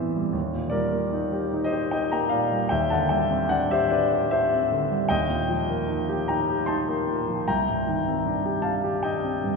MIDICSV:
0, 0, Header, 1, 2, 480
1, 0, Start_track
1, 0, Tempo, 791557
1, 203, Time_signature, 3, 2, 24, 8
1, 5800, End_track
2, 0, Start_track
2, 0, Title_t, "Grand piano"
2, 0, Program_c, 0, 0
2, 0, Control_c, 0, 64, 127
2, 0, Note_on_c, 0, 43, 32
2, 0, Note_on_c, 0, 52, 25
2, 0, Note_on_c, 0, 55, 26
2, 0, Note_on_c, 0, 59, 26
2, 0, Note_on_c, 0, 60, 25
2, 0, Note_on_c, 0, 64, 26
2, 0, Note_on_c, 0, 69, 35
2, 0, Note_on_c, 0, 71, 41
2, 0, Note_on_c, 0, 72, 40
2, 0, Note_on_c, 0, 74, 57
2, 0, Note_on_c, 0, 76, 53
2, 97, Note_off_c, 0, 55, 0
2, 97, Note_on_c, 0, 55, 25
2, 159, Note_off_c, 0, 52, 0
2, 180, Note_off_c, 0, 43, 0
2, 198, Note_on_c, 0, 39, 35
2, 208, Note_off_c, 0, 55, 0
2, 213, Note_off_c, 0, 72, 0
2, 213, Control_c, 0, 64, 0
2, 214, Note_off_c, 0, 60, 0
2, 214, Note_off_c, 0, 64, 0
2, 214, Note_off_c, 0, 74, 0
2, 214, Note_off_c, 0, 76, 0
2, 215, Note_off_c, 0, 69, 0
2, 217, Note_off_c, 0, 59, 0
2, 218, Note_off_c, 0, 71, 0
2, 316, Control_c, 0, 64, 127
2, 321, Note_on_c, 0, 46, 25
2, 422, Note_on_c, 0, 74, 56
2, 433, Note_on_c, 0, 70, 43
2, 436, Note_on_c, 0, 55, 27
2, 516, Note_off_c, 0, 46, 0
2, 556, Note_on_c, 0, 58, 25
2, 635, Note_off_c, 0, 55, 0
2, 682, Note_on_c, 0, 63, 28
2, 756, Note_off_c, 0, 58, 0
2, 801, Note_on_c, 0, 67, 27
2, 879, Note_off_c, 0, 63, 0
2, 931, Note_on_c, 0, 63, 25
2, 981, Note_off_c, 0, 70, 0
2, 996, Note_on_c, 0, 75, 48
2, 998, Note_off_c, 0, 67, 0
2, 1000, Note_off_c, 0, 74, 0
2, 1006, Note_on_c, 0, 72, 39
2, 1047, Note_on_c, 0, 67, 31
2, 1123, Note_off_c, 0, 63, 0
2, 1157, Note_off_c, 0, 72, 0
2, 1161, Note_off_c, 0, 75, 0
2, 1161, Note_on_c, 0, 79, 55
2, 1167, Note_on_c, 0, 63, 28
2, 1170, Note_on_c, 0, 75, 44
2, 1241, Note_off_c, 0, 67, 0
2, 1281, Note_off_c, 0, 79, 0
2, 1282, Note_off_c, 0, 75, 0
2, 1283, Note_on_c, 0, 82, 62
2, 1287, Note_on_c, 0, 58, 31
2, 1290, Note_on_c, 0, 79, 43
2, 1361, Note_off_c, 0, 63, 0
2, 1390, Note_on_c, 0, 77, 56
2, 1402, Note_off_c, 0, 79, 0
2, 1405, Note_on_c, 0, 74, 41
2, 1407, Note_off_c, 0, 82, 0
2, 1407, Note_on_c, 0, 46, 27
2, 1480, Note_off_c, 0, 58, 0
2, 1529, Note_on_c, 0, 55, 25
2, 1600, Note_off_c, 0, 46, 0
2, 1622, Note_off_c, 0, 39, 0
2, 1629, Note_off_c, 0, 74, 0
2, 1632, Note_on_c, 0, 79, 63
2, 1639, Note_off_c, 0, 77, 0
2, 1642, Note_on_c, 0, 76, 47
2, 1643, Note_on_c, 0, 39, 41
2, 1649, Note_off_c, 0, 55, 0
2, 1658, Control_c, 0, 64, 0
2, 1757, Note_off_c, 0, 76, 0
2, 1759, Note_on_c, 0, 81, 56
2, 1760, Note_off_c, 0, 79, 0
2, 1765, Control_c, 0, 64, 127
2, 1766, Note_on_c, 0, 50, 28
2, 1771, Note_on_c, 0, 78, 42
2, 1875, Note_on_c, 0, 79, 61
2, 1881, Note_on_c, 0, 55, 28
2, 1883, Note_off_c, 0, 78, 0
2, 1885, Note_off_c, 0, 81, 0
2, 1885, Note_on_c, 0, 76, 46
2, 1962, Note_off_c, 0, 50, 0
2, 2000, Note_on_c, 0, 60, 28
2, 2082, Note_off_c, 0, 55, 0
2, 2116, Note_off_c, 0, 76, 0
2, 2117, Note_on_c, 0, 78, 65
2, 2127, Note_on_c, 0, 74, 48
2, 2128, Note_off_c, 0, 79, 0
2, 2129, Note_on_c, 0, 62, 30
2, 2203, Note_off_c, 0, 60, 0
2, 2245, Note_off_c, 0, 74, 0
2, 2249, Note_off_c, 0, 78, 0
2, 2250, Note_on_c, 0, 76, 63
2, 2253, Note_on_c, 0, 67, 33
2, 2261, Note_on_c, 0, 72, 47
2, 2328, Note_off_c, 0, 62, 0
2, 2366, Note_on_c, 0, 74, 52
2, 2374, Note_off_c, 0, 72, 0
2, 2374, Note_on_c, 0, 71, 42
2, 2376, Note_off_c, 0, 76, 0
2, 2378, Note_on_c, 0, 62, 25
2, 2451, Note_off_c, 0, 67, 0
2, 2501, Note_on_c, 0, 67, 32
2, 2572, Note_off_c, 0, 62, 0
2, 2600, Note_off_c, 0, 71, 0
2, 2613, Note_off_c, 0, 74, 0
2, 2613, Note_on_c, 0, 76, 61
2, 2622, Note_on_c, 0, 72, 48
2, 2626, Note_on_c, 0, 62, 29
2, 2691, Note_off_c, 0, 67, 0
2, 2751, Note_on_c, 0, 60, 28
2, 2811, Note_off_c, 0, 62, 0
2, 2858, Note_on_c, 0, 50, 29
2, 2931, Note_off_c, 0, 60, 0
2, 2978, Note_on_c, 0, 55, 30
2, 3043, Note_off_c, 0, 50, 0
2, 3061, Note_off_c, 0, 39, 0
2, 3065, Note_off_c, 0, 72, 0
2, 3084, Note_off_c, 0, 76, 0
2, 3084, Note_on_c, 0, 79, 75
2, 3091, Note_on_c, 0, 75, 58
2, 3092, Note_off_c, 0, 55, 0
2, 3093, Note_on_c, 0, 39, 40
2, 3098, Control_c, 0, 64, 0
2, 3186, Control_c, 0, 64, 127
2, 3209, Note_on_c, 0, 46, 29
2, 3327, Note_on_c, 0, 53, 31
2, 3399, Note_off_c, 0, 46, 0
2, 3456, Note_on_c, 0, 58, 30
2, 3519, Note_off_c, 0, 53, 0
2, 3569, Note_on_c, 0, 63, 30
2, 3644, Note_off_c, 0, 58, 0
2, 3692, Note_on_c, 0, 67, 32
2, 3761, Note_off_c, 0, 63, 0
2, 3785, Note_off_c, 0, 75, 0
2, 3805, Note_off_c, 0, 79, 0
2, 3808, Note_on_c, 0, 82, 57
2, 3814, Note_on_c, 0, 79, 42
2, 3819, Note_on_c, 0, 63, 27
2, 3883, Note_off_c, 0, 67, 0
2, 3938, Note_on_c, 0, 67, 31
2, 4007, Note_off_c, 0, 63, 0
2, 4036, Note_off_c, 0, 79, 0
2, 4039, Note_on_c, 0, 84, 66
2, 4047, Note_on_c, 0, 81, 47
2, 4050, Note_off_c, 0, 82, 0
2, 4054, Note_on_c, 0, 63, 31
2, 4126, Note_off_c, 0, 67, 0
2, 4175, Note_on_c, 0, 58, 29
2, 4244, Note_off_c, 0, 63, 0
2, 4287, Note_on_c, 0, 46, 26
2, 4364, Note_off_c, 0, 58, 0
2, 4412, Note_on_c, 0, 53, 27
2, 4480, Note_off_c, 0, 46, 0
2, 4503, Note_off_c, 0, 81, 0
2, 4506, Note_off_c, 0, 39, 0
2, 4523, Note_off_c, 0, 84, 0
2, 4530, Note_off_c, 0, 53, 0
2, 4533, Note_on_c, 0, 79, 54
2, 4534, Note_on_c, 0, 82, 70
2, 4536, Note_on_c, 0, 36, 40
2, 4538, Control_c, 0, 64, 0
2, 4634, Control_c, 0, 64, 127
2, 4662, Note_on_c, 0, 43, 26
2, 4772, Note_on_c, 0, 51, 28
2, 4844, Note_off_c, 0, 43, 0
2, 4897, Note_on_c, 0, 60, 28
2, 4958, Note_off_c, 0, 51, 0
2, 5011, Note_on_c, 0, 62, 28
2, 5080, Note_off_c, 0, 60, 0
2, 5127, Note_on_c, 0, 67, 26
2, 5197, Note_off_c, 0, 62, 0
2, 5219, Note_off_c, 0, 79, 0
2, 5228, Note_on_c, 0, 81, 53
2, 5235, Note_on_c, 0, 77, 35
2, 5237, Note_on_c, 0, 62, 25
2, 5244, Note_off_c, 0, 82, 0
2, 5316, Note_off_c, 0, 67, 0
2, 5359, Note_on_c, 0, 67, 31
2, 5432, Note_off_c, 0, 62, 0
2, 5462, Note_off_c, 0, 77, 0
2, 5474, Note_on_c, 0, 79, 54
2, 5475, Note_off_c, 0, 81, 0
2, 5483, Note_on_c, 0, 75, 41
2, 5489, Note_on_c, 0, 62, 26
2, 5553, Note_off_c, 0, 67, 0
2, 5605, Note_on_c, 0, 60, 26
2, 5679, Note_off_c, 0, 62, 0
2, 5724, Note_on_c, 0, 43, 27
2, 5798, Note_off_c, 0, 60, 0
2, 5800, Note_off_c, 0, 36, 0
2, 5800, Note_off_c, 0, 43, 0
2, 5800, Note_off_c, 0, 75, 0
2, 5800, Note_off_c, 0, 79, 0
2, 5800, End_track
0, 0, End_of_file